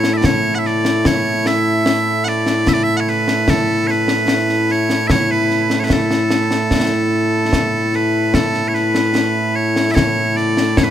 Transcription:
Already playing: bagpipes A2 A3 E4 C#5
0.04 snare
0.14 bagpipes D5 E5
0.24 bagpipes C#5, concert bass drum, snare
0.55 bagpipes E5 F#5
0.65 bagpipes D5, snare
0.85 snare
1.05 bagpipes C#5, concert bass drum, snare
1.46 bagpipes E5, snare
1.86 snare
2.24 bagpipes F#5, snare
2.28 bagpipes D5
2.46 snare
2.67 bagpipes E5, concert bass drum, snare
2.73 bagpipes D5
2.83 bagpipes E5
2.97 bagpipes C#5 F#5
3.07 bagpipes B4, snare
3.28 snare
3.48 bagpipes A4, concert bass drum, snare
3.87 bagpipes B4 C#5, snare
4.08 snare
4.28 snare
4.49 snare
4.69 bagpipes C#5, snare
4.90 snare
5.08 bagpipes C#5 E5, concert bass drum, snare
5.31 bagpipes B4
5.50 snare
5.70 snare
5.80 bagpipes C#5
5.84 bagpipes B4
5.90 bagpipes A4, concert bass drum, snare
6.11 snare
6.30 snare
6.51 snare
6.71 concert bass drum, snare
7.53 concert bass drum, snare
7.93 bagpipes B4, snare
8.34 bagpipes A4, concert bass drum, snare
8.54 snare
8.68 bagpipes C#5
8.74 bagpipes B4, snare
8.95 snare
9.15 snare
9.56 bagpipes C#5
9.76 snare
9.91 bagpipes C#5 E5
9.96 concert bass drum, snare
10.37 bagpipes D5, snare
10.57 snare
10.77 bagpipes C#5, concert bass drum, snare
10.83 bagpipes B4

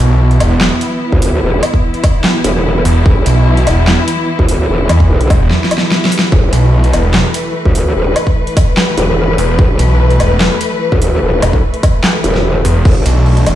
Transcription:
Already playing: string section E3 B3 E4
0.00 detuned saw bass B1
0.31 closed hi-hat
0.40 detuned saw bass E1, closed hi-hat, low woodblock
0.61 snare, clap
0.81 closed hi-hat
1.12 wobble bass D2, kick
1.22 open hi-hat
1.42 wobble bass E1
1.63 closed hi-hat, low woodblock
1.74 kick
1.94 closed hi-hat
2.04 kick, closed hi-hat, low woodblock
2.24 snare, clap
2.44 wobble bass E1, closed hi-hat
2.85 detuned saw bass E1, open hi-hat
3.06 wobble bass E1, kick
3.26 detuned saw bass B1, closed hi-hat
3.57 closed hi-hat
3.67 detuned saw bass E1, closed hi-hat, low woodblock
3.87 snare, clap
4.08 closed hi-hat
4.39 wobble bass D2, kick
4.49 open hi-hat
4.69 wobble bass E1
4.89 detuned saw bass E2, closed hi-hat, low woodblock
5.00 kick
5.10 wobble bass B1
5.21 closed hi-hat
5.30 detuned saw bass E1, kick, open hi-hat, low woodblock
5.41 detuned saw bass E1
5.51 snare
5.64 snare
5.71 closed hi-hat, low woodblock
5.78 snare
5.91 snare
6.05 snare
6.12 open hi-hat
6.19 snare
6.32 wobble bass E1, string section A3 B4, kick
6.53 detuned saw bass B1, closed hi-hat
6.84 closed hi-hat
6.93 detuned saw bass E1, closed hi-hat, low woodblock
7.14 snare, clap
7.34 closed hi-hat
7.65 wobble bass D2, kick
7.75 open hi-hat
7.95 wobble bass E1
8.16 closed hi-hat, low woodblock
8.27 kick
8.47 closed hi-hat
8.57 kick, closed hi-hat, low woodblock
8.77 snare, clap
8.98 wobble bass E1, closed hi-hat
9.38 detuned saw bass E1, open hi-hat
9.59 wobble bass E1, kick
9.79 detuned saw bass B1, closed hi-hat
10.10 closed hi-hat
10.20 detuned saw bass E1, closed hi-hat, low woodblock
10.40 snare, clap
10.61 closed hi-hat
10.92 wobble bass D2, kick
11.02 open hi-hat
11.22 wobble bass E1
11.42 detuned saw bass E1, closed hi-hat, low woodblock
11.53 wobble bass B1, kick
11.74 closed hi-hat
11.83 kick, closed hi-hat, low woodblock
12.04 snare, clap
12.24 wobble bass E1, closed hi-hat
12.35 snare
12.65 detuned saw bass E1, open hi-hat
12.85 wobble bass E1, string section D4, kick, crash
13.06 detuned saw bass B1, closed hi-hat
13.26 crash
13.37 closed hi-hat
13.46 detuned saw bass E1, closed hi-hat, low woodblock

